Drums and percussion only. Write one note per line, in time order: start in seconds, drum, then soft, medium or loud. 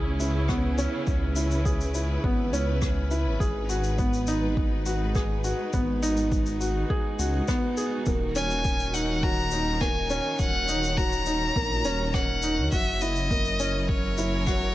0.20 shaker medium
0.48 kick loud
0.48 cross-stick medium
0.48 shaker medium
0.78 shaker medium
1.07 kick loud
1.07 shaker medium
1.36 shaker medium
1.51 shaker soft
1.66 kick loud
1.66 shaker medium
1.81 shaker medium
1.95 shaker medium
2.24 kick loud
2.54 shaker medium
2.82 kick loud
2.82 cross-stick medium
2.82 shaker medium
3.11 shaker medium
3.40 kick loud
3.40 shaker medium
3.69 shaker medium
3.84 shaker soft
3.99 kick loud
3.99 shaker medium
4.13 shaker medium
4.27 shaker medium
4.57 kick loud
4.86 shaker medium
5.15 kick loud
5.15 cross-stick medium
5.15 shaker medium
5.44 shaker medium
5.73 kick loud
5.73 shaker medium
6.03 shaker medium
6.17 shaker soft
6.32 kick loud
6.32 shaker medium
6.46 shaker medium
6.61 shaker medium
6.90 kick loud
7.19 shaker medium
7.48 kick loud
7.48 cross-stick medium
7.48 shaker medium
7.77 shaker medium
8.06 kick loud
8.06 shaker medium
8.35 shaker medium
8.50 shaker soft
8.65 kick loud
8.65 shaker medium
8.79 shaker medium
8.94 shaker medium
9.23 kick loud
9.51 shaker medium
9.81 kick loud
9.81 cross-stick medium
9.81 shaker medium
10.10 shaker medium
10.39 kick loud
10.39 shaker medium
10.68 shaker medium
10.83 shaker soft
10.98 kick loud
10.98 shaker medium
11.12 shaker soft
11.26 shaker medium
11.56 kick loud
11.84 shaker medium
12.14 kick loud
12.14 cross-stick medium
12.14 shaker medium
12.42 shaker medium
12.72 kick loud
12.72 shaker medium
13.01 shaker medium
13.16 shaker soft
13.31 kick loud
13.31 shaker medium
13.45 shaker medium
13.59 shaker medium
13.89 kick loud
14.18 shaker medium
14.47 kick loud
14.47 cross-stick medium
14.47 shaker medium